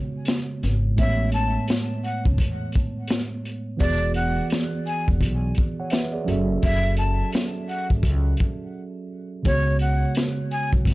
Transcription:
Already playing: C#3 G#3 B3 F#4 C#5
0.25 snare, closed hi-hat
0.63 G#1, snare, closed hi-hat
0.95 A1 A2 A3 B3 E5, kick, closed hi-hat
1.00 G#3 C#5
1.32 A5, closed hi-hat
1.68 snare, closed hi-hat
2.04 F#5, closed hi-hat
2.25 C#2, kick
2.38 E2, kick, closed hi-hat
2.72 kick, closed hi-hat
3.08 snare, closed hi-hat
3.45 closed hi-hat
3.77 E1 E3 B3 F#4 D5, kick, closed hi-hat
3.82 G#4 D5
4.14 F#5, closed hi-hat
4.50 snare, closed hi-hat
4.87 G#5, closed hi-hat
5.08 E1, kick
5.21 B1, kick, closed hi-hat
5.55 kick, closed hi-hat
5.80 C#5 F#5
5.90 B4 E5, snare, closed hi-hat
6.13 G#4 D5
6.25 F#1 F#3 C#4 F#4, closed hi-hat
6.29 A4 E5
6.63 F#1 E5, kick, closed hi-hat
6.97 A5, closed hi-hat
7.32 snare, closed hi-hat
7.69 F#5, closed hi-hat
7.90 A1, kick
8.03 C#2, kick, closed hi-hat
8.37 kick, closed hi-hat
9.43 C#2 C#3 G#3 B3 C#5, kick, closed hi-hat
9.47 F#4 C#5
9.79 F#5, closed hi-hat
10.15 snare, closed hi-hat
10.51 G#5, closed hi-hat
10.73 B1, kick
10.85 G#1, kick, closed hi-hat

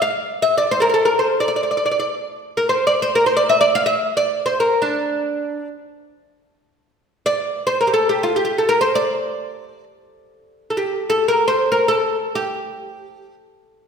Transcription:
0.02 F5
0.42 E5
0.58 D5
0.71 C5
0.80 A4 A#4
0.89 A#4
0.94 A4
1.05 A#4
1.19 C5
1.40 D5
1.48 D5
1.56 D5
1.63 D5
1.71 D5
1.77 D5
1.86 D5
1.91 D5
2.00 D5
2.57 A#4
2.69 C5
2.87 D5
3.02 C5
3.15 A#4
3.26 C5
3.37 D5
3.49 E5
3.61 D5
3.75 F5
3.86 E5
4.17 D5
4.46 C5
4.60 A#4
4.82 D4
7.26 D5
7.67 C5
7.81 A#4
7.87 G4
7.93 A4
8.09 G4
8.23 F4
8.36 G4
8.45 G4
8.58 A4
8.69 A#4
8.81 C5
8.95 D5
10.70 A4
10.77 G4
11.10 A4
11.28 A#4
11.48 C5
11.72 A#4
11.88 A4
12.35 G4

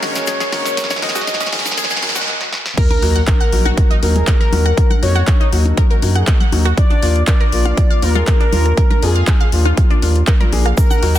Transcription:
Already playing: D#2 C#3 G#3 A#3 F#4 A#4, riser
0.02 D#3 G#3 A#3 C#4 F#4 C#5, snare, open hi-hat, high conga
0.15 D#3 G#3 A#3 C#4 F#4, snare, closed hi-hat, shaker
0.27 G#4, snare, closed hi-hat, shaker
0.40 G#4, snare, closed hi-hat, shaker
0.52 D#3 G#3 A#3 C#4 F#4, snare, open hi-hat, high conga
0.65 C#5, snare, closed hi-hat, shaker
0.77 G#4, snare, closed hi-hat, shaker
0.84 snare
0.90 C#5, snare, closed hi-hat, high conga, shaker
0.96 snare
1.02 D#3 G#3 A#3 C#4 F#4 D#5, snare, open hi-hat, low conga
1.09 snare
1.16 F#4, snare, closed hi-hat, shaker
1.21 snare
1.27 snare, closed hi-hat, high conga, shaker
1.34 snare
1.40 C#4, snare, closed hi-hat, shaker
1.46 snare
1.52 D#3 G#3 A#3 C#4 F#4, snare, open hi-hat, low conga
1.59 snare
1.66 snare, closed hi-hat, high conga, shaker
1.72 snare
1.77 G#4, snare, closed hi-hat, shaker
1.84 snare
1.90 G#4, snare, closed hi-hat, shaker
1.97 snare
2.02 D#3 G#3 A#3 C#4 F#4, snare, open hi-hat, high conga
2.09 snare
2.15 D#3 G#3 A#3 C#4 F#4 G#4, snare, closed hi-hat, shaker
2.22 snare
2.28 snare
2.41 snare
2.53 snare
2.66 snare
2.77 A#4 A#5, kick, closed hi-hat, crash, sub drop
2.90 A#4 A#5, closed hi-hat, high conga
3.02 D#2 F#3 A#3 D#4 F#4, open hi-hat
3.16 F#5 F#6, closed hi-hat
3.27 A#4, kick, clap, closed hi-hat, high conga
3.40 F#5 F#6, closed hi-hat
3.52 A#1 F#3 A#3 D#4 F#4, open hi-hat
3.65 F#4 F#5, closed hi-hat, high conga
3.77 kick, closed hi-hat
3.91 D#4 D#5, closed hi-hat
4.02 D#2 F#3 A#3 D#4 F#4 A#4, open hi-hat, high conga
4.16 F#3 A#3 D#4 G#4, closed hi-hat, low conga
4.27 A#4 A#5, kick, clap, closed hi-hat
4.41 A#4 A#5, closed hi-hat
4.52 D#2 F#3 A#3 D#4 F#4, open hi-hat, high conga, low conga
4.66 F#5 F#6, cross-stick, closed hi-hat
4.77 kick, closed hi-hat
4.90 F#5 F#6, closed hi-hat, high conga, low conga
5.02 F2 F#3 A#3 D#4 F#4 C#5, open hi-hat
5.16 F#4 F#5, closed hi-hat
5.27 kick, clap, closed hi-hat, high conga
5.40 D#4 D#5, closed hi-hat
5.52 D#2 F#3 A#3 D#4 F#4, open hi-hat
5.65 closed hi-hat, high conga
5.77 A#4 A#5, kick, closed hi-hat
5.90 A#4 A#5, closed hi-hat
6.02 F#2 F#3 A#3 D#4 F#4, open hi-hat, high conga
6.15 F#3 A#3 D#4 G#4 F#5 F#6, closed hi-hat
6.27 kick, clap, closed hi-hat
6.40 F#5 F#6, closed hi-hat, low conga
6.52 D#2 F#3 A#3 D#4 F#4, open hi-hat, high conga
6.65 F#4 F#5, cross-stick, closed hi-hat
6.77 D5, kick, closed hi-hat
6.90 D4 D5, closed hi-hat, high conga
7.02 D#2 F3 A#3 D4 F4, open hi-hat
7.16 closed hi-hat
7.27 A#4 D5 A#5, kick, clap, closed hi-hat, high conga
7.40 A#4 A#5, closed hi-hat
7.52 A#1 F3 A#3 D4 F4, open hi-hat
7.65 F5 F6, closed hi-hat, high conga
7.77 kick, closed hi-hat
7.90 F5 F6, closed hi-hat
8.02 D#2 F3 A#3 D4 F4 A#4, open hi-hat, high conga
8.15 F3 A#3 D4 F4 G#4 F5, closed hi-hat, low conga
8.27 kick, clap, closed hi-hat
8.40 D4 D5, closed hi-hat
8.52 D#2 F3 A#3 D4 F4, open hi-hat, high conga, low conga
8.66 cross-stick, closed hi-hat
8.77 A#4 A#5, kick, closed hi-hat
8.91 A#4 A#5, closed hi-hat, high conga, low conga
9.02 F2 F3 A#3 D4 F4 G#4, open hi-hat
9.16 F5 F6, closed hi-hat
9.27 kick, clap, closed hi-hat, high conga
9.41 F5 F6, closed hi-hat
9.52 D#2 F3 A#3 D4 F4, open hi-hat
9.65 F4 F5, closed hi-hat, high conga
9.77 kick, closed hi-hat
9.90 D4 D5, closed hi-hat
10.02 D#2 F3 A#3 D4 F4, open hi-hat, high conga
10.16 closed hi-hat
10.27 A#4 A#5, kick, clap, closed hi-hat
10.40 F3 A#3 D4 F4 A#4 A#5, closed hi-hat, low conga
10.52 A#1 F3 A#3 D4 G#4, open hi-hat, high conga
10.65 F5 F6, cross-stick, closed hi-hat
10.77 D#3 F#3 A#3 F#4 A#4, kick, closed hi-hat, shaker
10.90 F#5 F#6, closed hi-hat, high conga, shaker
11.02 D#2 F#3 A#3 D#4 F#4, open hi-hat, ride
11.15 F#4 F#5, closed hi-hat, shaker

